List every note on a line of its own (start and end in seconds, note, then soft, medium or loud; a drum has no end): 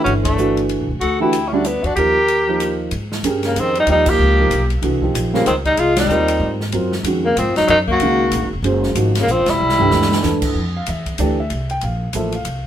0.00 0.35 E3 medium
0.00 0.36 A3 medium
0.00 0.13 C#4 medium
0.00 0.36 D4 medium
0.00 0.36 E4 medium
0.00 0.13 F#4 medium
0.05 0.76 G1 medium
0.05 ride soft
0.23 0.66 A3 medium
0.23 0.65 D4 medium
0.23 kick medium
0.23 ride medium
0.38 0.85 E3 medium
0.38 0.86 A3 medium
0.38 0.86 D4 medium
0.38 0.86 F#4 medium
0.38 hi-hat pedal medium
0.57 ride soft
0.69 ride soft
0.80 0.90 B1 medium
0.89 1.00 D2 medium
0.89 kick soft
1.00 1.80 D2 medium
1.00 1.19 F#4 medium
1.00 1.20 A4 medium
1.00 ride medium
1.20 1.32 E3 medium
1.20 1.32 A3 medium
1.20 1.33 D4 medium
1.20 1.49 E4 medium
1.20 1.33 F#4 medium
1.20 1.50 G4 medium
1.33 hi-hat pedal soft
1.33 ride medium
1.48 1.54 C#4 medium
1.48 1.56 E4 soft
1.52 1.64 D3 medium
1.52 1.64 G3 medium
1.52 1.64 C#4 medium
1.52 1.68 D4 medium
1.52 1.64 E4 medium
1.52 1.68 F#4 medium
1.64 1.88 B3 medium
1.64 1.85 D4 medium
1.64 hi-hat pedal soft
1.64 ride medium
1.83 1.95 E2 medium
1.83 1.95 D4 medium
1.83 1.97 F#4 medium
1.83 ride soft
1.96 2.88 D#2 medium
1.96 2.14 F3 medium
1.96 2.15 A#3 soft
1.96 2.15 D#4 soft
1.96 2.75 G4 medium
1.96 2.15 G4 medium
1.96 2.77 A#4 medium
1.96 ride medium
2.28 ride medium
2.47 2.90 F3 medium
2.47 2.90 A#3 medium
2.47 2.90 D#4 medium
2.47 2.90 A#4 medium
2.60 hi-hat pedal soft
2.60 ride medium
2.91 3.23 G#2 medium
2.91 ride medium
3.12 snare medium
3.24 3.55 G2 medium
3.24 3.72 C#4 medium
3.24 3.72 G4 medium
3.24 3.72 G#4 medium
3.24 3.72 A#4 medium
3.24 hi-hat pedal medium
3.24 ride medium
3.43 3.61 C#3 medium
3.43 3.61 A#3 medium
3.43 snare soft
3.43 ride soft
3.56 3.86 F2 medium
3.56 3.76 D#3 medium
3.56 3.77 C4 medium
3.56 hi-hat pedal medium
3.56 ride medium
3.75 3.88 G3 medium
3.75 ride soft
3.80 3.89 D#4 medium
3.87 4.18 D#2 medium
3.87 4.35 F3 medium
3.87 4.11 G3 medium
3.87 4.35 A#3 medium
3.87 4.35 D#4 medium
3.87 4.36 G4 medium
3.87 ride medium
3.91 4.11 D#4 medium
4.06 4.72 A#3 medium
4.06 4.72 G4 loud
4.06 kick medium
4.06 crash medium
4.18 4.50 C#2 medium
4.39 4.50 F3 medium
4.39 4.50 A#3 medium
4.39 4.51 D#4 medium
4.39 4.51 A#4 medium
4.50 4.81 B1 medium
4.50 hi-hat pedal soft
4.50 ride medium
4.70 ride soft
4.82 5.13 C2 medium
4.82 5.00 E3 medium
4.82 5.00 A3 soft
4.82 5.01 D4 medium
4.82 5.01 F#4 medium
4.82 ride medium
5.01 5.30 F3 medium
5.01 5.30 A#3 medium
5.01 5.30 D#4 medium
5.01 5.31 G4 medium
5.01 kick soft
5.14 5.45 A#1 medium
5.14 hi-hat pedal medium
5.14 ride medium
5.33 5.46 C#3 medium
5.33 5.45 G3 medium
5.33 5.46 A#3 medium
5.33 5.45 C4 medium
5.33 5.46 F4 medium
5.33 5.46 G#4 medium
5.33 snare soft
5.46 5.77 C#2 medium
5.46 5.55 D#3 medium
5.46 5.56 C4 medium
5.46 hi-hat pedal medium
5.46 ride medium
5.65 5.78 G3 medium
5.65 5.81 D#4 medium
5.65 kick soft
5.65 ride soft
5.76 6.07 C2 medium
5.76 5.95 G#3 medium
5.76 5.98 F4 loud
5.76 ride medium
5.96 6.56 G3 medium
5.96 6.58 D#4 medium
5.96 snare medium
5.96 ride medium
6.08 6.39 D#2 medium
6.08 6.58 C4 medium
6.08 6.58 F4 medium
6.08 6.57 G4 medium
6.08 6.58 A#4 medium
6.08 hi-hat pedal soft
6.28 ride medium
6.40 6.72 G#2 medium
6.61 snare soft
6.72 7.03 F#2 medium
6.72 6.91 F#3 medium
6.72 6.91 C4 medium
6.72 6.91 F4 medium
6.72 6.91 A#4 medium
6.72 ride medium
6.92 snare medium
7.03 7.35 F2 medium
7.03 7.23 D#3 medium
7.03 7.23 G#3 medium
7.03 7.23 C#4 medium
7.03 7.24 F#4 medium
7.03 hi-hat pedal soft
7.03 ride medium
7.24 7.36 C#3 medium
7.24 7.37 A#3 medium
7.37 7.48 G#2 medium
7.37 7.55 F3 medium
7.37 7.56 C4 medium
7.37 hi-hat pedal soft
7.37 ride medium
7.48 7.58 F#2 medium
7.56 7.68 F2 medium
7.56 7.67 F#3 medium
7.56 7.69 D#4 medium
7.56 snare soft
7.56 ride soft
7.67 7.99 F#2 medium
7.67 7.76 F#3 medium
7.67 7.79 D#4 loud
7.67 ride medium
7.88 8.48 A#3 medium
7.88 8.49 F#4 loud
7.88 kick medium
8.00 8.31 C#2 medium
8.00 8.48 D#3 medium
8.00 8.48 G#3 medium
8.00 8.49 C#4 medium
8.00 8.49 F#4 medium
8.00 ride medium
8.31 8.42 A#1 medium
8.31 hi-hat pedal soft
8.31 ride medium
8.42 8.52 F#1 medium
8.53 8.62 F1 medium
8.62 8.94 F#1 medium
8.62 8.94 G#3 medium
8.62 8.95 C#4 medium
8.62 8.95 F#4 medium
8.62 8.95 C5 medium
8.62 ride medium
8.83 snare soft
8.95 9.26 G#1 medium
8.95 9.13 F3 medium
8.95 9.13 A#3 medium
8.95 9.14 D#4 medium
8.95 9.14 F#4 medium
8.95 hi-hat pedal medium
8.95 ride medium
9.15 9.32 C#3 medium
9.15 snare medium
9.15 ride medium
9.22 9.32 A#3 medium
9.26 9.38 A#1 medium
9.26 9.52 F3 medium
9.26 hi-hat pedal medium
9.31 9.52 C4 medium
9.38 9.48 F#1 medium
9.46 9.59 F1 medium
9.46 10.44 G3 medium
9.46 10.44 E4 loud
9.46 snare medium
9.46 ride soft
9.60 9.91 C2 medium
9.69 snare medium
9.79 10.21 E3 medium
9.79 10.21 A3 medium
9.79 10.21 D4 medium
9.79 10.22 G4 medium
9.79 floor tom medium
9.91 10.22 D2 medium
9.91 snare medium
10.02 snare medium
10.12 snare medium
10.23 10.54 E2 medium
10.23 10.55 E3 medium
10.23 10.55 A3 medium
10.23 10.56 D4 medium
10.23 10.56 A4 medium
10.23 snare medium
10.23 hi-hat pedal soft
10.42 kick medium
10.42 crash medium
10.55 10.86 F2 medium
10.77 10.88 F5 medium
10.86 11.18 E2 medium
10.86 11.18 E5 medium
10.86 hi-hat pedal soft
10.86 ride medium
11.06 kick soft
11.06 ride soft
11.18 11.49 D2 medium
11.18 11.36 E3 medium
11.18 11.36 A3 medium
11.18 11.37 D4 medium
11.18 11.37 G4 medium
11.18 11.38 D5 medium
11.18 hi-hat pedal soft
11.18 ride medium
11.40 11.69 E5 medium
11.50 11.81 C2 medium
11.50 ride medium
11.70 11.82 G5 medium
11.70 ride soft
11.81 12.12 A#1 medium
11.81 12.13 F5 medium
11.81 ride medium
12.13 12.44 A1 medium
12.13 12.32 F3 medium
12.13 12.32 A#3 medium
12.13 12.32 E4 medium
12.13 12.32 A4 medium
12.13 12.34 E5 medium
12.13 hi-hat pedal medium
12.13 ride medium
12.32 12.64 F5 medium
12.32 ride soft
12.45 12.67 C2 medium
12.45 ride medium